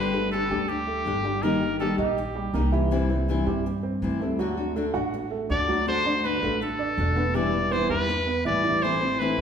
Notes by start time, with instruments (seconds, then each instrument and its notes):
Already playing: upright bass G1, nylon-string guitar D3 G3 D4 G4, trumpet B4
0.13 nylon-string guitar G3 D4 G4, grand piano A3 A4
0.31 nylon-string guitar D3 G3 D4 G4, trumpet A4
0.50 upright bass D2, grand piano G3 G4, nylon-string guitar G3 D4 G4
0.68 trumpet G4, muted nylon-string guitar stroke
0.87 grand piano A3 A4
1.05 upright bass G1, nylon-string guitar D3 G3 D4 G4
1.24 grand piano G3 G4, nylon-string guitar G3 D4 G4
1.42 nylon-string guitar D#3 G3 A#3 D#4 G4, grand piano D#3 D#4, trumpet A#4
1.61 nylon-string guitar A#3 D#4 G4
1.80 nylon-string guitar D#3 G3 A#3 D#4 G4, grand piano G3 G4, trumpet A4
1.98 upright bass A#1, nylon-string guitar A#3 D#4 G4, grand piano D#4 D#5, trumpet G4
2.18 muted nylon-string guitar stroke
2.35 grand piano G3 G4
2.54 upright bass C2, nylon-string guitar D#3 G3 A#3 D#4 G4, grand piano A#3 A#4
2.72 grand piano E3 E4, nylon-string guitar A#3 D#4 G4
2.91 nylon-string guitar C3 E3 G3 C4 E4
3.10 nylon-string guitar G3 C4 E4, grand piano C4 C5
3.28 nylon-string guitar C3 E3 G3 C4 E4
3.46 upright bass G2, grand piano G3 G4, nylon-string guitar G3 C4 E4
3.66 muted nylon-string guitar stroke
3.83 grand piano C4 C5
4.02 upright bass D2, nylon-string guitar C3 E3 G3 C4 E4
4.20 nylon-string guitar G3 C4 E4, grand piano A3 A4
4.39 nylon-string guitar D3 A3 D4 F#4, grand piano F#3 F#4
4.57 nylon-string guitar A3 D4 F#4
4.75 nylon-string guitar D3 A3 D4 F#4, grand piano A3 A4
4.94 upright bass A1, nylon-string guitar A3 D4 F#4, grand piano F#4 F#5
5.14 muted nylon-string guitar stroke
5.31 grand piano A3 A4
5.49 upright bass D2, nylon-string guitar D3 A3 D4 F#4, grand piano D4 D5, trumpet D5
5.68 grand piano F#3 F#4, nylon-string guitar A3 D4 F#4
5.86 nylon-string guitar D3 A3 D4 F#4, trumpet C5
6.05 nylon-string guitar A3 D4 F#4, grand piano D4 D5
6.23 nylon-string guitar D3 A3 D4 F#4, trumpet B4
6.42 upright bass A1, grand piano A3 A4, nylon-string guitar A3 D4 F#4
6.61 trumpet A4, muted nylon-string guitar stroke
6.79 grand piano D4 D5
6.98 upright bass E1, nylon-string guitar D3 A3 D4 F#4
7.16 nylon-string guitar A3 D4 F#4, grand piano B3 B4
7.34 nylon-string guitar B2 E3 G3 B3 E4, grand piano G3 G4, trumpet D5
7.53 nylon-string guitar G3 B3 E4
7.71 nylon-string guitar B2 E3 G3 B3 E4, grand piano B3 B4, trumpet C5
7.89 upright bass E2, nylon-string guitar G3 B3 E4, grand piano G4 G5, trumpet B4
8.09 muted nylon-string guitar stroke
8.27 grand piano B3 B4
8.45 upright bass A1, nylon-string guitar B2 E3 G3 B3 E4, grand piano E4 E5, trumpet D5
8.63 grand piano E3 E4, nylon-string guitar G3 B3 E4
8.83 nylon-string guitar E3 A3 C4 E4, trumpet C5
9.00 nylon-string guitar A3 C4 E4, grand piano C4 C5
9.19 nylon-string guitar E3 A3 C4 E4, trumpet B4
9.38 grand piano A3